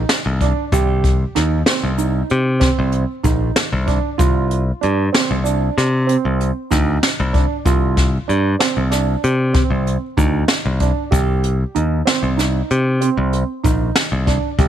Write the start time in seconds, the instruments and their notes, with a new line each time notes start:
Already playing: grand piano D#4
0.09 snare, closed hi-hat, shaker
0.26 picked electric bass C2
0.41 grand piano D4, kick, closed hi-hat
0.72 picked electric bass C2, grand piano G4, kick, closed hi-hat, shaker
1.04 kick, closed hi-hat
1.35 picked electric bass D#2, grand piano D#4, snare, closed hi-hat
1.66 grand piano C4, snare, closed hi-hat
1.83 picked electric bass C2
1.98 grand piano D#4, closed hi-hat, shaker
2.30 picked electric bass C3, closed hi-hat
2.60 grand piano C4, kick, snare, closed hi-hat
2.79 picked electric bass C2
2.92 closed hi-hat
3.23 picked electric bass A#1, grand piano D#4, kick, closed hi-hat, shaker
3.56 snare, closed hi-hat, shaker
3.73 picked electric bass C2
3.87 grand piano D4, kick, closed hi-hat
4.18 picked electric bass C2, grand piano F4, kick, closed hi-hat, shaker
4.51 closed hi-hat
4.81 picked electric bass G2, grand piano D4, closed hi-hat
5.13 grand piano C4, snare, closed hi-hat
5.31 picked electric bass C2
5.44 grand piano D4, closed hi-hat, shaker
5.78 picked electric bass C3, snare, closed hi-hat
6.07 grand piano C4, closed hi-hat
6.25 picked electric bass C2
6.41 closed hi-hat
6.70 picked electric bass D2, grand piano D#4, kick, snare, closed hi-hat, shaker
7.03 snare, closed hi-hat, shaker
7.20 picked electric bass C2
7.33 grand piano D4, kick, closed hi-hat
7.65 picked electric bass C2, grand piano F4, kick, closed hi-hat, shaker
7.97 kick, snare, closed hi-hat
8.28 picked electric bass G2, grand piano D4, closed hi-hat
8.59 grand piano C4, snare, closed hi-hat
8.77 picked electric bass C2
8.90 grand piano D4, snare, closed hi-hat, shaker
9.24 picked electric bass C3, closed hi-hat
9.53 grand piano C4, kick, snare, closed hi-hat
9.70 picked electric bass C2
9.87 closed hi-hat
10.17 picked electric bass D2, grand piano D#4, kick, closed hi-hat, shaker
10.48 snare, closed hi-hat, shaker
10.65 picked electric bass C2
10.80 grand piano D4, kick, closed hi-hat, shaker
11.11 picked electric bass C2, grand piano G4, kick, closed hi-hat, shaker
11.44 closed hi-hat
11.75 picked electric bass D#2, grand piano D#4, closed hi-hat
12.05 grand piano C4, snare, closed hi-hat
12.23 picked electric bass C2
12.37 grand piano D#4, snare, closed hi-hat, shaker
12.70 picked electric bass C3, closed hi-hat
13.01 grand piano C4, closed hi-hat
13.17 picked electric bass C2
13.33 closed hi-hat
13.63 picked electric bass A#1, grand piano D#4, kick, closed hi-hat, shaker
13.96 snare, closed hi-hat, shaker
14.12 picked electric bass C2
14.26 grand piano D4, kick, snare, closed hi-hat
14.59 picked electric bass C2, grand piano G4, kick, closed hi-hat